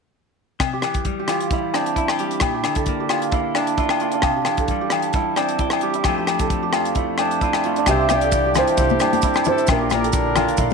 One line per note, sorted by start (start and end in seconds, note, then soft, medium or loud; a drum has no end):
0.60 0.83 C3 medium
0.60 kick medium
0.60 cross-stick medium
0.60 closed hi-hat soft
0.60 low agogo medium
0.73 1.19 G4 medium
0.82 1.26 E3 soft
0.82 cross-stick medium
0.82 closed hi-hat soft
0.82 low agogo soft
0.94 kick medium
0.94 closed hi-hat soft
1.05 1.52 G3 soft
1.05 kick medium
1.05 closed hi-hat soft
1.19 2.19 G4 medium
1.28 2.39 E3 medium
1.28 1.58 F4 medium
1.28 cross-stick medium
1.28 closed hi-hat soft
1.28 low agogo medium
1.40 closed hi-hat soft
1.51 2.19 G3 medium
1.51 1.97 E4 medium
1.51 kick medium
1.51 closed hi-hat soft
1.74 2.41 C4 soft
1.74 3.55 D4 medium
1.74 cross-stick soft
1.74 closed hi-hat soft
1.74 low agogo soft
1.86 closed hi-hat soft
1.96 2.08 E4 soft
1.96 3.17 E4 medium
1.96 kick medium
1.96 closed hi-hat soft
2.08 2.42 G4 soft
2.08 cross-stick medium
2.08 low agogo medium
2.19 2.43 G3 medium
2.19 2.54 G4 medium
2.19 closed hi-hat soft
2.31 closed hi-hat soft
2.40 2.65 A#2 medium
2.40 kick medium
2.40 cross-stick medium
2.40 closed hi-hat soft
2.40 low agogo medium
2.54 3.00 G4 medium
2.64 3.09 D3 medium
2.64 cross-stick medium
2.64 closed hi-hat soft
2.64 low agogo medium
2.75 4.58 A4 medium
2.75 kick medium
2.75 closed hi-hat soft
2.86 3.33 A#3 soft
2.86 kick medium
2.86 closed hi-hat soft
3.00 4.36 G4 medium
3.09 4.24 D3 soft
3.09 3.39 F4 medium
3.09 cross-stick medium
3.09 closed hi-hat soft
3.09 low agogo medium
3.22 closed hi-hat soft
3.32 4.00 A#3 medium
3.32 3.78 E4 medium
3.32 kick medium
3.32 closed hi-hat soft
3.55 4.13 D4 medium
3.55 4.22 D4 medium
3.55 cross-stick medium
3.55 closed hi-hat soft
3.55 low agogo medium
3.67 closed hi-hat soft
3.77 4.07 E4 medium
3.77 4.22 F4 medium
3.77 kick medium
3.77 closed hi-hat soft
3.89 cross-stick medium
3.89 low agogo medium
4.00 4.21 A#3 medium
4.00 5.21 F4 medium
4.00 closed hi-hat soft
4.12 5.37 D4 medium
4.12 closed hi-hat soft
4.22 4.46 C3 medium
4.22 kick medium
4.22 cross-stick medium
4.22 closed hi-hat soft
4.22 low agogo medium
4.36 4.81 G4 medium
4.45 4.91 E3 soft
4.45 cross-stick medium
4.45 closed hi-hat soft
4.45 low agogo medium
4.57 6.40 A4 medium
4.57 kick medium
4.57 closed hi-hat soft
4.68 5.14 G3 medium
4.68 kick medium
4.68 closed hi-hat soft
4.81 5.82 G4 medium
4.90 6.03 E3 medium
4.90 cross-stick medium
4.90 closed hi-hat soft
4.90 low agogo medium
5.02 closed hi-hat soft
5.13 5.82 G3 medium
5.13 5.60 E4 medium
5.13 kick medium
5.13 closed hi-hat soft
5.36 6.08 C4 medium
5.36 7.19 D4 medium
5.36 cross-stick medium
5.36 closed hi-hat soft
5.36 low agogo medium
5.49 closed hi-hat soft
5.59 5.95 E4 medium
5.59 6.03 G4 soft
5.59 kick medium
5.59 closed hi-hat soft
5.70 cross-stick medium
5.70 low agogo medium
5.81 6.06 G3 medium
5.81 6.17 G4 medium
5.81 closed hi-hat soft
5.94 6.79 E4 medium
5.94 closed hi-hat soft
6.04 7.85 F2 medium
6.04 6.27 F3 medium
6.04 kick medium
6.04 cross-stick medium
6.04 closed hi-hat soft
6.04 low agogo medium
6.08 6.52 A3 medium
6.08 7.19 C4 soft
6.08 7.43 F4 medium
6.18 6.62 G4 medium
6.27 6.74 F3 medium
6.27 cross-stick medium
6.27 closed hi-hat soft
6.27 low agogo medium
6.39 8.23 A4 medium
6.39 kick medium
6.39 closed hi-hat medium
6.50 6.96 A3 soft
6.50 kick medium
6.50 closed hi-hat soft
6.63 8.00 G4 medium
6.73 7.85 F3 medium
6.73 7.02 F4 medium
6.73 cross-stick medium
6.73 closed hi-hat soft
6.73 low agogo medium
6.85 closed hi-hat soft
6.95 7.65 A3 medium
6.95 7.41 E4 medium
6.95 kick medium
6.95 closed hi-hat soft
7.18 7.85 C4 medium
7.18 7.78 D4 medium
7.18 cross-stick medium
7.18 closed hi-hat soft
7.18 low agogo medium
7.31 closed hi-hat soft
7.41 7.71 E4 medium
7.41 7.86 F4 medium
7.41 kick medium
7.41 closed hi-hat soft
7.53 cross-stick medium
7.53 low agogo medium
7.64 7.86 A3 medium
7.64 8.56 F4 medium
7.64 closed hi-hat soft
7.76 9.01 D4 medium
7.76 closed hi-hat soft
7.86 8.61 C2 medium
7.86 8.33 C3 medium
7.86 8.79 G3 medium
7.86 8.09 G4 medium
7.86 8.09 E5 loud
7.86 kick medium
7.86 cross-stick medium
7.86 closed hi-hat soft
7.86 low agogo medium
7.86 maracas medium
7.90 8.10 C5 medium
8.00 8.45 G4 medium
8.09 8.53 F4 medium
8.09 8.53 D5 medium
8.09 cross-stick medium
8.09 closed hi-hat soft
8.09 high conga medium
8.09 low agogo medium
8.09 maracas medium
8.14 8.54 G4 medium
8.21 10.03 A4 medium
8.21 closed hi-hat medium
8.32 9.66 E3 medium
8.32 kick medium
8.32 closed hi-hat soft
8.32 maracas medium
8.46 9.45 G4 medium
8.55 9.24 C4 medium
8.55 9.43 E4 medium
8.55 8.85 F4 medium
8.55 9.47 C5 medium
8.55 cross-stick medium
8.55 closed hi-hat medium
8.55 low conga medium
8.55 low agogo medium
8.55 maracas medium
8.60 9.44 G4 medium
8.67 closed hi-hat soft
8.77 8.96 C2 medium
8.77 9.70 G3 medium
8.77 9.23 E4 medium
8.77 kick medium
8.77 closed hi-hat soft
8.77 maracas medium
8.89 high conga medium
8.89 maracas soft
9.00 9.67 G2 medium
9.00 10.74 D4 medium
9.00 cross-stick medium
9.00 closed hi-hat soft
9.00 low agogo medium
9.00 maracas medium
9.13 closed hi-hat soft
9.13 high conga medium
9.22 9.58 E4 medium
9.22 kick medium
9.22 closed hi-hat soft
9.22 maracas medium
9.26 9.67 C4 medium
9.34 cross-stick medium
9.34 low agogo medium
9.34 maracas soft
9.45 9.67 E4 medium
9.45 9.81 G4 medium
9.45 9.70 C5 medium
9.45 closed hi-hat soft
9.45 low conga medium
9.45 maracas medium
9.50 9.69 A4 medium
9.58 10.42 E4 medium
9.58 closed hi-hat soft
9.58 maracas soft
9.67 10.43 A#1 medium
9.67 10.15 A#2 medium
9.67 9.90 D4 medium
9.67 kick medium
9.67 cross-stick medium
9.67 closed hi-hat medium
9.67 low agogo medium
9.67 maracas medium
9.71 10.60 A#3 medium
9.71 9.92 F4 medium
9.71 9.93 A#4 medium
9.81 10.26 G4 medium
9.90 10.74 F4 medium
9.90 10.74 A#4 medium
9.90 10.74 D5 medium
9.90 cross-stick medium
9.90 closed hi-hat soft
9.90 high conga medium
9.90 low agogo medium
9.90 maracas medium
10.03 10.74 A4 medium
10.03 closed hi-hat medium
10.13 10.74 D3 medium
10.13 kick medium
10.13 closed hi-hat soft
10.13 maracas medium
10.26 10.74 G4 medium
10.36 10.74 D4 medium
10.36 10.64 F4 medium
10.36 cross-stick medium
10.36 closed hi-hat soft
10.36 low conga medium
10.36 low agogo medium
10.36 maracas medium
10.48 closed hi-hat soft
10.57 10.74 A#1 medium
10.57 10.74 A#3 medium
10.57 10.74 E4 medium
10.57 kick medium
10.57 closed hi-hat soft
10.57 maracas medium
10.70 maracas soft